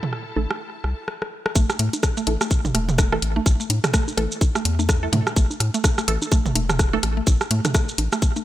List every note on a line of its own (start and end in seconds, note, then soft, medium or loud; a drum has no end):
0.00 1.08 E4 medium
0.00 1.08 A4 medium
0.00 1.08 A5 medium
0.00 mid tom medium
0.13 cross-stick soft
0.36 0.46 A1 medium
0.36 0.44 E3 loud
0.36 0.44 A3 medium
0.36 0.44 A4 loud
0.36 low bongo medium
0.51 cross-stick medium
0.84 0.94 C2 medium
0.84 cross-stick soft
1.08 cross-stick medium
1.22 cross-stick medium
1.46 cross-stick medium
1.55 1.65 A1 loud
1.55 1.59 A3 loud
1.55 kick loud
1.55 low bongo soft
1.55 shaker medium
1.70 cross-stick medium
1.70 shaker soft
1.79 1.89 A2 loud
1.79 1.83 A3 medium
1.79 closed hi-hat medium
1.93 closed hi-hat soft
1.93 low bongo soft
1.93 shaker soft
2.03 kick loud
2.03 cross-stick soft
2.03 cross-stick loud
2.03 shaker medium
2.17 2.20 A3 loud
2.17 shaker soft
2.27 2.37 A1 medium
2.27 2.35 E3 medium
2.27 2.35 A3 medium
2.27 2.35 A4 loud
2.27 closed hi-hat medium
2.27 low bongo soft
2.41 2.44 A3 medium
2.41 cross-stick medium
2.41 shaker soft
2.51 kick loud
2.51 shaker medium
2.65 2.72 A1 medium
2.65 mid tom medium
2.65 low bongo soft
2.65 shaker soft
2.74 3.18 E1 loud
2.74 2.78 A3 loud
2.74 cross-stick soft
2.74 closed hi-hat loud
2.89 mid tom loud
2.89 shaker soft
2.98 3.02 A3 medium
2.98 kick loud
2.98 cross-stick medium
2.98 low bongo soft
2.98 shaker medium
3.12 3.18 E3 medium
3.12 3.18 A3 medium
3.12 3.18 A4 loud
3.12 cross-stick medium
3.22 3.40 A1 medium
3.22 closed hi-hat medium
3.36 3.39 A3 loud
3.36 low bongo soft
3.46 3.56 A1 loud
3.46 kick loud
3.46 cross-stick soft
3.46 shaker medium
3.60 3.63 A3 medium
3.60 shaker soft
3.70 3.80 A2 medium
3.70 closed hi-hat loud
3.70 low bongo soft
3.84 cross-stick medium
3.84 closed hi-hat soft
3.84 mid tom loud
3.84 shaker soft
3.94 3.98 A3 loud
3.94 kick loud
3.94 cross-stick loud
3.94 shaker medium
4.08 low bongo soft
4.08 shaker soft
4.17 4.27 A1 medium
4.17 4.25 E3 loud
4.17 4.25 A3 medium
4.17 4.21 A3 medium
4.17 4.25 A4 loud
4.17 cross-stick soft
4.17 closed hi-hat loud
4.32 shaker soft
4.41 kick loud
4.41 low bongo soft
4.41 shaker medium
4.55 4.58 A3 loud
4.55 cross-stick medium
4.55 shaker soft
4.65 5.08 E2 loud
4.65 closed hi-hat loud
4.79 4.82 A3 medium
4.79 low bongo soft
4.79 shaker soft
4.89 kick loud
4.89 cross-stick soft
4.89 cross-stick loud
4.89 shaker medium
5.03 5.08 E3 medium
5.03 5.08 A3 medium
5.03 5.08 A4 medium
5.13 5.23 A2 medium
5.13 5.17 A3 loud
5.13 closed hi-hat medium
5.13 mid tom loud
5.13 low bongo soft
5.27 cross-stick medium
5.27 shaker soft
5.36 5.46 A1 loud
5.36 5.40 A3 medium
5.36 kick loud
5.36 shaker medium
5.51 low bongo soft
5.51 shaker soft
5.60 5.70 A2 loud
5.60 cross-stick soft
5.60 closed hi-hat loud
5.74 5.77 A3 loud
5.74 closed hi-hat soft
5.74 shaker soft
5.84 kick loud
5.84 cross-stick medium
5.84 low bongo soft
5.84 shaker medium
5.98 6.01 A3 medium
5.98 cross-stick medium
5.98 shaker soft
6.08 6.18 A1 loud
6.08 6.16 E3 medium
6.08 6.16 A3 medium
6.08 6.16 A4 loud
6.08 closed hi-hat loud
6.22 low bongo soft
6.22 shaker soft
6.32 6.36 A3 loud
6.32 kick loud
6.32 cross-stick soft
6.32 shaker medium
6.46 6.53 A1 medium
6.46 mid tom medium
6.46 shaker soft
6.55 6.99 E1 loud
6.55 6.59 A3 medium
6.55 closed hi-hat loud
6.55 low bongo soft
6.70 cross-stick medium
6.70 mid tom loud
6.70 shaker soft
6.79 kick loud
6.79 cross-stick medium
6.79 shaker medium
6.93 6.99 E3 medium
6.93 6.96 A3 loud
6.93 6.99 A3 medium
6.93 6.99 A4 loud
6.93 low bongo soft
7.03 7.21 A1 medium
7.03 cross-stick soft
7.03 closed hi-hat loud
7.17 7.20 A3 medium
7.27 7.37 A1 loud
7.27 kick loud
7.27 low bongo soft
7.27 shaker medium
7.41 cross-stick medium
7.41 shaker soft
7.51 7.61 A2 medium
7.51 7.55 A3 loud
7.51 closed hi-hat loud
7.65 cross-stick medium
7.65 closed hi-hat soft
7.65 mid tom medium
7.65 low bongo soft
7.65 shaker soft
7.74 7.78 A3 medium
7.74 kick loud
7.74 cross-stick soft
7.74 cross-stick loud
7.74 shaker medium
7.89 shaker soft
7.98 8.08 A1 loud
7.98 closed hi-hat medium
7.98 low bongo soft
8.12 8.15 A3 loud
8.12 cross-stick medium
8.12 shaker soft
8.22 kick loud
8.22 shaker medium
8.36 8.39 A3 medium
8.36 low bongo soft
8.36 shaker soft